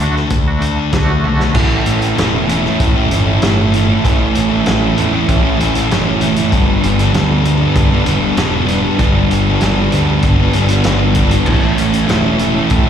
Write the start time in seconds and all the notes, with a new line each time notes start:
Already playing: D3 A3 D4
0.00 D2 D3 A3 D4 F#4, closed hi-hat
0.16 muted clean electric guitar stroke, snare
0.28 D2 D3 A3, kick, closed hi-hat
0.48 D4 F#4
0.52 A3
0.61 D3 A3 D4, closed hi-hat
0.79 muted clean electric guitar stroke
0.91 D2 D3 A3, kick, snare, closed hi-hat
0.95 D3 A3 D4 F#4
1.24 B1 D3 A3, high tom
1.28 D4 F#4
1.40 D4 F#4, snare
1.45 A3
1.54 A1 A2 E3 A3 C#4 E4, kick, crash
1.71 A3 C#4 E4
1.85 A1 E3 A3 C#4 E4, closed hi-hat
2.01 A3 C#4 E4, closed hi-hat
2.15 E1 A2 E3 A3 C#4 E4, closed hi-hat
2.19 snare
2.48 E3 A3 C#4 E4, closed hi-hat
2.64 A3 C#4 E4, snare
2.80 A2, kick, closed hi-hat
2.95 A3 C#4 E4
3.10 G1 E3 A3 C#4 E4, closed hi-hat
3.26 A3 C#4 E4
3.41 G1 A2 E3 A3 C#4 E4, snare, closed hi-hat
3.72 E3 A3 C#4 E4, closed hi-hat
3.88 A3 C#4 E4
4.03 A1 A2 E3 A3 C#4 E4, kick, closed hi-hat
4.18 A3 C#4 E4
4.34 A1 E3 A3 C#4 E4, closed hi-hat
4.50 A3 C#4 E4
4.64 A1 A2 E3 A3 C#4 E4, snare, closed hi-hat
4.94 E3 A3 C#4 E4, closed hi-hat
5.00 E2
5.12 A3 C#4 E4
5.29 A1, kick, closed hi-hat
5.41 A3 C#4 E4
5.58 A1 E3 A3 C#4 E4, closed hi-hat
5.75 A3 C#4 E4, closed hi-hat
5.89 F#1 A2 E3 A3 C#4 E4, snare, closed hi-hat
6.20 E3 A3 C#4 E4, closed hi-hat
6.36 A3 C#4 E4, closed hi-hat
6.52 G1 G2 D3 G3 B3 D4, kick, closed hi-hat
6.67 G3 B3 D4
6.82 G1 D3 G3 B3 D4, closed hi-hat
6.99 G3 B3 D4, closed hi-hat
7.13 D2 G2 D3 G3 B3 D4, snare, closed hi-hat
7.45 D3 G3 B3 D4, closed hi-hat
7.61 G3 B3 D4
7.76 G2, kick, closed hi-hat
7.92 G3 B3 D4
8.05 E1 D3 G3 B3, closed hi-hat
8.09 D4
8.23 G3 B3 D4
8.34 E1 G2 D3 B3, closed hi-hat
8.38 G2 D3 G3 B3 D4, snare
8.65 D3 G3 B3, closed hi-hat
8.71 D3 G3 B3 D4
8.82 G3 B3 D4
8.86 G3 B3 D4
8.96 G1 G2 D3 G3 B3 D4, kick, closed hi-hat
9.02 G2 D3 G3 B3 D4
9.12 G3 D4
9.16 G3 B3 D4
9.28 G1 D3 G3 B3 D4, closed hi-hat
9.48 G3 B3 D4
9.61 G1 G2 D3 G3 B3 D4, snare, closed hi-hat
9.92 D2 D3 G3 B3 D4, closed hi-hat
10.09 G3 B3 D4
10.23 G1, kick, closed hi-hat
10.41 G3 B3 D4
10.53 G1 D3 G3 B3 D4, closed hi-hat
10.68 G3 B3 D4, closed hi-hat
10.84 G1 G2 D3 G3 B3 D4, snare, closed hi-hat
11.15 D3 G3 B3, kick, closed hi-hat
11.19 D4
11.31 G3 B3 D4, closed hi-hat
11.46 A1 A2 E3 A3 C#4 E4, kick, crash
11.63 A3 C#4 E4
11.77 A1 E3 A3 C#4 E4, closed hi-hat
11.92 A3 C#4 E4, closed hi-hat
12.08 E1 A2 E3 A3 C#4 E4, snare, closed hi-hat
12.39 E3 A3 C#4 E4, closed hi-hat
12.56 A3 C#4 E4
12.70 A2, kick, closed hi-hat
12.85 C#4 E4